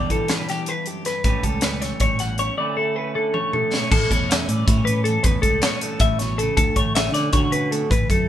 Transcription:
Already playing: clean electric guitar E2 D3 G3 D4 D5
0.10 fingered electric bass E3, clean electric guitar G4 A4, kick, closed hi-hat
0.27 clean electric guitar B3 B4, snare, closed hi-hat
0.37 clean electric guitar D4
0.48 clean electric guitar E3 G4, snare, closed hi-hat
0.66 clean electric guitar E2 B4, closed hi-hat
0.86 clean electric guitar F#2 G4, closed hi-hat
1.05 clean electric guitar G2 B4, snare, closed hi-hat
1.24 fingered electric bass A1, clean electric guitar A2 G3 C#4 G4 B4, kick, closed hi-hat
1.43 fingered electric bass C#2, clean electric guitar G4 A4, kick, closed hi-hat
1.61 clean electric guitar C#4 B4, snare, closed hi-hat
1.81 clean electric guitar E3 C#5, snare, closed hi-hat
2.00 fingered electric bass A1, clean electric guitar G3 C#5, kick, closed hi-hat
2.19 clean electric guitar E2 F#5, snare, closed hi-hat
2.38 clean electric guitar C#4 C#5, closed hi-hat
2.58 clean electric guitar D2 A3 C#4 E4 D5
2.77 clean electric guitar E4 A4
2.96 clean electric guitar C#4 B4
3.15 clean electric guitar D3 A4
3.33 clean electric guitar A3 C#5, high tom
3.53 clean electric guitar A2 A4, mid tom
3.72 clean electric guitar B3 C#5, snare
3.82 clean electric guitar C#4
3.91 fingered electric bass A1, clean electric guitar A2 A4, kick, crash
4.10 fingered electric bass E2, clean electric guitar G3 C#5, kick, closed hi-hat
4.29 clean electric guitar C#4 E5, snare, closed hi-hat
4.48 fingered electric bass A2, clean electric guitar E3 D5, closed hi-hat
4.66 fingered electric bass A2, clean electric guitar E4 C#5, kick, closed hi-hat
4.78 clean electric guitar G4
4.85 clean electric guitar C#4 B4, closed hi-hat
5.04 clean electric guitar E2 A4, closed hi-hat
5.23 fingered electric bass E2, clean electric guitar A2 B4, kick, closed hi-hat
5.42 fingered electric bass C#2, clean electric guitar A4, kick, closed hi-hat
5.47 clean electric guitar G3
5.62 clean electric guitar B3 C#5, snare, closed hi-hat
5.74 clean electric guitar C#4
5.81 clean electric guitar E3 A4, closed hi-hat
6.00 fingered electric bass A1, clean electric guitar A2 E5, kick, closed hi-hat
6.19 clean electric guitar B2 C#5, snare, closed hi-hat
6.38 clean electric guitar C#3 A4, closed hi-hat
6.57 fingered electric bass D2, clean electric guitar D2 A4, kick, closed hi-hat
6.76 fingered electric bass A1, clean electric guitar A3 C#5, kick, closed hi-hat
6.95 clean electric guitar C#4 E5, snare, closed hi-hat
7.12 fingered electric bass D3, clean electric guitar D3 D5, snare, closed hi-hat
7.33 fingered electric bass D3, clean electric guitar F#4 C#5, kick, closed hi-hat
7.52 clean electric guitar C#4 B4, closed hi-hat
7.71 clean electric guitar A2 A4, closed hi-hat
7.90 fingered electric bass A1, clean electric guitar D2 B4, kick, closed hi-hat
8.09 fingered electric bass F#2, clean electric guitar A3 A4, kick, closed hi-hat

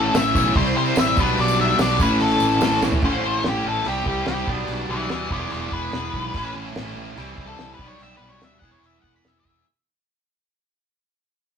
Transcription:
Already playing: distorted electric guitar A2 E3 A3 C#4 E4, lead electric guitar A4
0.14 fingered electric bass A1, lead electric guitar E5, snare, open hi-hat, tambourine
0.35 fingered electric bass B1, distorted electric guitar A2 E3 A3 C#4 E4, kick, tambourine
0.46 tambourine
0.55 fingered electric bass C2, distorted electric guitar C3 G3 C4 E4, lead electric guitar C5, kick, open hi-hat, tambourine
0.65 tambourine
0.76 fingered electric bass C3, lead electric guitar C5
0.86 tambourine
0.96 fingered electric bass A1, lead electric guitar E5, snare, open hi-hat, tambourine
1.08 tambourine
1.17 fingered electric bass B1, distorted electric guitar B2 G3 B3 D4, lead electric guitar B4, kick, tambourine
1.27 tambourine
1.38 fingered electric bass B1, lead electric guitar D5, open hi-hat, tambourine
1.48 tambourine
1.61 lead electric guitar E5
1.69 tambourine
1.78 fingered electric bass B1, distorted electric guitar B2 G3 B3 D4, lead electric guitar D5, snare, open hi-hat, tambourine
1.99 fingered electric bass A1, distorted electric guitar A2 E3 A3 C#4 E4, lead electric guitar B4, kick, tambourine
2.20 fingered electric bass A1, lead electric guitar A4, open hi-hat, tambourine
2.31 tambourine
2.40 fingered electric bass A1, tambourine
2.51 tambourine
2.61 fingered electric bass A1, distorted electric guitar A2 E3 A3 C#4 E4, snare, open hi-hat, tambourine
2.72 tambourine
2.82 fingered electric bass A1, snare, tambourine
2.92 floor tom, tambourine
3.02 fingered electric bass A1, distorted electric guitar A2 E3 A3 C#4 E4, lead electric guitar C5, kick, crash
3.23 fingered electric bass A1
3.44 fingered electric bass A1, snare, open hi-hat
3.48 lead electric guitar G4
3.65 fingered electric bass A1, lead electric guitar A4
3.85 fingered electric bass C2, distorted electric guitar C3 G3 C4 E4, lead electric guitar G4, open hi-hat
4.06 fingered electric bass C2, lead electric guitar G4, kick
4.26 fingered electric bass C2, lead electric guitar G4, snare, open hi-hat
4.47 fingered electric bass B1, distorted electric guitar B2 G3 B3 D4, kick
4.68 fingered electric bass B1, open hi-hat
4.89 fingered electric bass B1, lead electric guitar B4 E5
5.09 fingered electric bass D2, lead electric guitar B4 E5, snare, open hi-hat
5.30 fingered electric bass E1, distorted electric guitar E3 G#3 B3 E4, lead electric guitar B4 D5, kick
5.50 fingered electric bass E1, lead electric guitar B4 D5, open hi-hat
5.71 fingered electric bass E1, lead electric guitar B4, kick
5.92 fingered electric bass E1, snare, open hi-hat
6.13 fingered electric bass B1, kick
6.34 fingered electric bass A1, distorted electric guitar A2 E3 A3 C#4 E4, kick, open hi-hat
6.54 fingered electric bass A1
6.75 fingered electric bass A1, snare, open hi-hat
6.96 fingered electric bass A1
7.16 fingered electric bass C2, distorted electric guitar C3 E3 G3 C4 E4, open hi-hat
7.38 fingered electric bass C2, kick
7.47 lead electric guitar A4
7.58 fingered electric bass C2, snare, open hi-hat
7.74 lead electric guitar B4
7.79 fingered electric bass B1, distorted electric guitar B2 G3 B3 D4 G4, kick
7.88 lead electric guitar C#5
7.99 fingered electric bass B1, lead electric guitar E5, open hi-hat
8.17 fingered electric bass B1, lead electric guitar B4
8.29 lead electric guitar C#5
8.41 fingered electric bass D2, lead electric guitar E5, snare, open hi-hat
8.59 fingered electric bass E1, distorted electric guitar E3 B3, lead electric guitar F#5, kick
8.63 distorted electric guitar E4 G#4
8.71 lead electric guitar C#5
8.81 fingered electric bass E1, open hi-hat
8.86 lead electric guitar E5
9.02 fingered electric bass E1, lead electric guitar F#5, kick
9.16 lead electric guitar B5
9.24 fingered electric bass E1, snare
9.28 lead electric guitar E5
9.40 lead electric guitar E5
9.45 fingered electric bass E1, kick

